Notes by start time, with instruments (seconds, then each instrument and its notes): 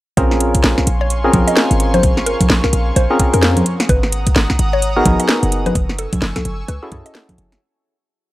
0.17 808-style bass A#1, synth stab C4 C#4 F4 G#4 A#4, synth pluck C5, analog synth pad F5 G#5 C6 C#6, kick, closed hi-hat
0.31 snare
0.41 closed hi-hat
0.55 kick, closed hi-hat
0.64 808-style bass A#1, snare
0.78 kick, snare
0.87 808-style bass A#1, closed hi-hat
1.01 synth pluck C#5
1.10 closed hi-hat
1.24 synth stab C4 C#4 F4 G#4 A#4
1.33 808-style bass A#1, synth stab C4 C#4 F4 G#4 A#4, kick, closed hi-hat, high conga
1.48 synth pluck D#5, closed hi-hat
1.57 snare
1.71 808-style bass G#1, closed hi-hat
1.80 closed hi-hat
1.94 synth pluck C5, closed hi-hat, high conga
2.03 kick, closed hi-hat
2.17 snare
2.26 synth pluck A#4, closed hi-hat
2.41 kick, closed hi-hat, high conga
2.50 808-style bass A#1, snare
2.64 synth pluck A#4, kick, snare
2.73 808-style bass A#1, closed hi-hat
2.96 808-style bass A#1, synth pluck C5, closed hi-hat
3.10 synth stab C4 C#4 F4 G#4 A#4
3.20 synth stab C4 C#4 F4 G#4 A#4, kick, closed hi-hat
3.34 808-style bass F2, synth pluck A#4, closed hi-hat
3.43 snare
3.57 closed hi-hat, high conga
3.66 analog synth pad F#5 A#5 D#6, closed hi-hat
3.80 snare, closed hi-hat
3.89 808-style bass G#1, synth pluck B4, kick, closed hi-hat
4.03 snare
4.12 closed hi-hat
4.27 kick, closed hi-hat
4.36 808-style bass G#1, snare
4.50 kick, snare
4.59 808-style bass G#1, closed hi-hat
4.73 synth pluck C#5
4.82 closed hi-hat
4.96 synth stab B3 D#4 F#4 G#4 A#4
5.06 808-style bass G#1, synth stab B3 D#4 G#4 A#4, kick, closed hi-hat, high conga
5.20 synth pluck D#5, closed hi-hat
5.29 snare
5.43 808-style bass F#1, closed hi-hat
5.52 closed hi-hat
5.66 synth pluck B4, closed hi-hat, high conga
5.75 808-style bass F#1, analog synth pad G#5 C#6 E6, kick, closed hi-hat
5.89 snare
5.99 synth pluck A4, closed hi-hat
6.13 kick, closed hi-hat, high conga
6.22 808-style bass F#1, snare
6.36 synth pluck A4, kick, snare, closed hi-hat, high conga
6.45 808-style bass F#1, closed hi-hat
6.68 808-style bass C#2, synth pluck B4, closed hi-hat
6.83 synth stab C#4 E4 F#4 G#4 A4
6.92 808-style bass F#2, synth stab C#4 E4 F#4 G#4 A4, kick, closed hi-hat
7.06 synth pluck D#5, closed hi-hat
7.15 snare
7.29 kick, closed hi-hat, high conga
7.38 808-style bass F#1, closed hi-hat
7.52 snare, closed hi-hat